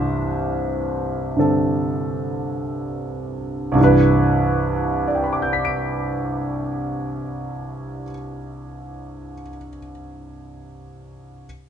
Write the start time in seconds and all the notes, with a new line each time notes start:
Already playing: C2 G2 E3 D4 C5 E5
1.36 G2 D3 C4 A4
3.72 C2 G2
3.78 E3 D4
3.84 B4
5.08 D5
5.15 G5
5.24 B5
5.33 D6
5.42 G6
5.53 B6
5.65 D7